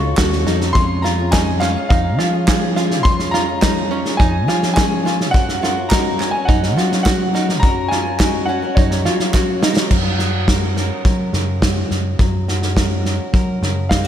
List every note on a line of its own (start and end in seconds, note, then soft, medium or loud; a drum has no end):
0.00 0.15 C#2 medium
0.00 0.17 F4 medium
0.00 0.17 F#4 soft
0.00 0.17 A4 soft
0.00 0.42 C#6 medium
0.05 0.17 C#4 soft
0.17 0.44 D#2 medium
0.17 0.44 F#3 medium
0.17 0.45 C#4 medium
0.17 0.46 F#4 medium
0.17 0.47 A4 medium
0.17 kick medium
0.17 snare loud
0.17 clap medium
0.33 snare soft
0.46 0.75 F2 medium
0.46 0.60 F#3 medium
0.46 0.61 C#4 medium
0.46 0.75 D#4 medium
0.46 0.60 F#4 medium
0.46 0.58 A4 medium
0.46 snare soft
0.60 0.74 C#4 soft
0.60 0.75 F#4 soft
0.60 0.75 A4 soft
0.60 snare soft
0.73 1.75 F2 loud
0.73 1.04 F3 medium
0.73 1.02 G#3 medium
0.73 1.02 C#4 medium
0.73 1.03 F4 medium
0.73 1.04 G#4 medium
0.73 1.04 C6 loud
0.73 kick loud
0.73 snare soft
1.02 1.18 G#3 medium
1.02 1.18 C#4 medium
1.02 1.32 F4 medium
1.02 1.18 F4 medium
1.02 1.17 G#4 medium
1.02 1.33 A#5 medium
1.02 snare soft
1.18 1.32 C#4 soft
1.18 1.32 F4 soft
1.18 1.32 G#4 soft
1.31 1.61 F3 medium
1.31 1.60 G#3 medium
1.31 1.61 C#4 medium
1.31 1.61 D#4 medium
1.31 1.62 F4 medium
1.31 1.62 G#4 medium
1.31 1.59 G#5 medium
1.31 kick medium
1.31 snare loud
1.31 clap medium
1.60 1.76 G#3 medium
1.60 1.90 C#4 medium
1.60 1.76 C#4 medium
1.60 1.76 F4 medium
1.60 1.75 G#4 medium
1.60 1.88 F5 medium
1.60 snare soft
1.60 clap medium
1.76 2.18 C#4 soft
1.76 2.19 F4 soft
1.76 2.19 G#4 soft
1.89 2.19 F2 medium
1.89 2.18 D#4 medium
1.89 2.72 F5 medium
1.89 kick loud
1.89 snare soft
2.19 3.05 F3 medium
2.19 2.33 G#3 medium
2.19 2.34 C#4 medium
2.19 2.47 F4 medium
2.19 2.33 F4 medium
2.19 2.32 G#4 medium
2.19 snare soft
2.33 2.47 C#4 soft
2.33 2.48 F4 soft
2.33 2.47 G#4 soft
2.48 2.76 F3 medium
2.48 2.75 G#3 medium
2.48 2.76 C#4 medium
2.48 2.77 F4 medium
2.48 2.76 G#4 medium
2.48 2.77 G#4 medium
2.48 kick medium
2.48 snare loud
2.48 clap medium
2.76 3.04 G#3 medium
2.76 3.05 C#4 medium
2.76 3.04 F4 medium
2.76 3.05 F4 medium
2.76 3.06 G#4 medium
2.76 snare soft
2.91 snare soft
3.03 4.04 F2 loud
3.03 3.34 F3 medium
3.03 3.32 G#3 medium
3.03 3.33 C#4 medium
3.03 3.33 F4 medium
3.03 3.34 G#4 medium
3.03 3.31 C6 loud
3.03 kick loud
3.03 snare soft
3.20 snare soft
3.31 3.48 G#3 medium
3.31 3.48 C#4 medium
3.31 3.62 F4 medium
3.31 3.48 F4 medium
3.31 3.47 G#4 medium
3.31 4.21 A#5 loud
3.31 snare soft
3.48 3.61 C#4 soft
3.48 3.62 F4 soft
3.48 3.62 G#4 soft
3.62 3.91 F3 medium
3.62 3.90 G#3 medium
3.62 3.90 C#4 medium
3.62 3.90 D#4 medium
3.62 3.91 F4 medium
3.62 3.91 G#4 medium
3.62 kick medium
3.62 snare loud
3.62 clap medium
3.91 4.05 G#3 medium
3.91 4.19 C#4 medium
3.91 4.06 C#4 medium
3.91 4.05 F4 medium
3.91 4.04 G#4 medium
4.05 4.47 C#4 soft
4.05 4.48 F4 medium
4.05 4.48 G#4 medium
4.05 snare soft
4.17 4.48 F2 medium
4.17 4.47 D#4 medium
4.17 4.72 G#5 medium
4.17 kick loud
4.17 snare soft
4.48 5.34 F3 medium
4.48 4.62 G#3 medium
4.48 4.63 C#4 medium
4.48 4.76 F4 medium
4.48 4.62 F4 medium
4.48 4.61 G#4 medium
4.48 snare soft
4.62 4.76 C#4 soft
4.62 4.76 F4 soft
4.62 4.76 G#4 soft
4.62 snare soft
4.74 5.05 F3 medium
4.74 5.04 G#3 medium
4.74 5.05 C#4 medium
4.74 5.05 F4 medium
4.74 5.05 G#4 medium
4.74 5.06 G#4 medium
4.74 5.15 G#5 medium
4.74 kick medium
4.74 snare loud
4.74 clap medium
5.05 5.20 G#3 medium
5.05 5.20 C#4 medium
5.05 5.34 F4 medium
5.05 5.19 F4 medium
5.05 5.18 G#4 medium
5.05 snare soft
5.19 5.32 C#4 soft
5.19 5.34 F4 soft
5.19 5.34 G#4 soft
5.19 snare soft
5.31 6.33 F#2 loud
5.31 5.61 F#3 medium
5.31 5.61 C#4 medium
5.31 5.62 F#4 medium
5.31 5.63 A#4 medium
5.31 5.91 F#5 loud
5.31 kick loud
5.31 snare soft
5.49 snare soft
5.62 5.77 F#3 medium
5.62 5.77 C#4 medium
5.62 5.91 F4 medium
5.62 5.76 F#4 medium
5.62 5.75 A#4 medium
5.62 snare soft
5.77 5.90 C#4 soft
5.77 5.91 F#4 soft
5.77 5.91 A#4 medium
5.89 6.18 F#3 medium
5.89 6.19 C#4 medium
5.89 6.19 D#4 medium
5.89 6.20 F#4 medium
5.89 6.20 A#4 medium
5.89 6.34 A#5 medium
5.89 kick medium
5.89 snare loud
5.89 clap medium
6.20 6.34 F#3 medium
6.20 6.34 C#4 medium
6.20 6.48 C#4 medium
6.20 6.34 F#4 medium
6.20 6.33 A#4 medium
6.20 snare soft
6.20 clap medium
6.31 6.77 A#4 medium
6.31 6.47 G#5 medium
6.35 6.76 C#4 soft
6.35 6.77 F#4 soft
6.45 6.77 F#2 medium
6.45 6.76 D#4 medium
6.45 7.02 F#5 medium
6.45 kick loud
6.45 snare soft
6.63 snare soft
6.76 6.91 F#3 medium
6.76 7.63 F#3 medium
6.76 6.91 C#4 medium
6.76 7.05 F4 medium
6.76 6.90 F#4 medium
6.76 6.89 A#4 medium
6.76 snare soft
6.90 7.04 C#4 soft
6.90 7.05 F#4 soft
6.90 7.05 A#4 soft
6.90 snare soft
7.03 7.33 F#3 medium
7.03 7.33 C#4 medium
7.03 7.34 F#4 medium
7.03 7.34 A#4 medium
7.03 7.44 F#5 medium
7.03 kick medium
7.03 snare loud
7.03 clap medium
7.34 7.48 F#3 medium
7.34 7.49 C#4 medium
7.34 7.62 D#4 medium
7.34 7.48 F#4 medium
7.34 7.47 A#4 medium
7.34 snare soft
7.48 7.62 C#4 soft
7.48 7.62 F#4 soft
7.48 7.62 A#4 soft
7.48 snare soft
7.60 8.62 F#2 loud
7.60 7.90 F#3 medium
7.60 7.91 C#4 medium
7.60 7.91 F#4 medium
7.60 7.91 A#5 medium
7.60 kick loud
7.60 snare soft
7.64 7.92 A#4 medium
7.88 8.05 F#3 medium
7.88 8.06 C#4 medium
7.88 8.19 F4 medium
7.88 8.05 F#4 medium
7.88 8.43 G#5 medium
7.88 snare soft
7.93 8.04 A#4 medium
8.05 8.19 C#4 soft
8.05 8.20 F#4 soft
8.05 8.20 A#4 soft
8.20 8.46 F#3 medium
8.20 8.47 C#4 medium
8.20 8.48 D#4 medium
8.20 8.48 F#4 medium
8.20 8.48 A#4 medium
8.20 kick medium
8.20 snare loud
8.20 clap medium
8.46 8.62 F#3 medium
8.46 8.62 C#4 medium
8.46 8.76 C#4 medium
8.46 8.62 F#4 medium
8.46 8.61 A#4 medium
8.46 8.76 F#5 medium
8.62 9.05 C#4 soft
8.62 9.05 F#4 soft
8.62 9.05 A#4 soft
8.75 9.06 F#2 medium
8.75 9.05 D#4 medium
8.75 9.57 C#5 medium
8.75 kick loud
8.75 snare soft
8.91 snare soft
9.05 9.79 F#3 medium
9.05 9.19 F#3 medium
9.05 9.20 C#4 medium
9.05 9.33 F4 medium
9.05 9.20 F#4 medium
9.05 9.18 A#4 medium
9.05 snare soft
9.20 9.33 C#4 soft
9.20 9.33 F#4 soft
9.20 9.34 A#4 medium
9.20 snare soft
9.33 9.61 F#3 medium
9.33 9.62 C#4 medium
9.33 9.62 F#4 medium
9.33 9.63 A#4 medium
9.33 kick medium
9.33 snare medium
9.33 clap medium
9.62 9.91 F#3 medium
9.62 9.91 C#4 medium
9.62 9.91 D#4 medium
9.62 9.91 F#4 medium
9.62 9.92 A#4 medium
9.62 snare medium
9.77 snare medium
9.90 10.90 F#2 medium
9.90 12.17 F#3 medium
9.90 kick medium
9.90 snare soft
9.90 crash medium
10.19 11.61 F#4 soft
10.19 snare soft
10.47 12.76 C#4 medium
10.47 10.76 A#4 medium
10.47 kick medium
10.47 snare medium
10.76 11.05 A#4 soft
10.76 snare soft
11.05 11.30 F#3 medium
11.05 11.32 A#4 medium
11.05 kick medium
11.05 snare soft
11.33 11.83 F#2 medium
11.33 12.19 C#3 medium
11.33 12.16 A#4 soft
11.33 snare soft
11.62 12.16 F#4 medium
11.62 kick medium
11.62 snare loud
11.90 12.15 F#2 medium
11.90 snare soft
12.19 13.18 F#2 medium
12.19 14.07 F#3 medium
12.19 kick medium
12.19 snare soft
12.48 13.90 F#4 soft
12.48 snare soft
12.62 snare soft
12.76 14.07 C#4 medium
12.76 13.05 A#4 medium
12.76 kick medium
12.76 snare medium
13.05 13.33 A#4 soft
13.05 snare soft
13.33 13.58 F#3 medium
13.33 13.61 A#4 medium
13.33 kick loud
13.33 snare soft
13.62 14.07 F#2 medium
13.62 14.07 C#3 medium
13.62 14.07 A#4 soft
13.62 snare soft
13.89 14.05 D#4 soft
13.89 14.07 F5 medium
13.89 kick medium
13.89 snare medium